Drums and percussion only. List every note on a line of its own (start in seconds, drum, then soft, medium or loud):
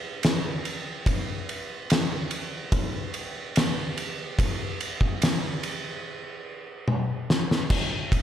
0.23 snare loud
0.23 ride medium
0.65 ride medium
1.06 kick loud
1.06 ride medium
1.49 ride medium
1.90 snare loud
1.90 ride loud
2.31 ride medium
2.72 kick loud
2.72 ride medium
3.14 ride medium
3.56 snare loud
3.56 ride loud
3.97 ride medium
4.39 kick loud
4.39 ride loud
4.81 ride medium
5.01 kick medium
5.22 snare loud
5.22 ride loud
5.63 ride medium
6.88 high tom medium
7.30 snare medium
7.51 snare medium
7.70 kick loud
7.70 crash loud
8.12 kick loud
8.12 ride medium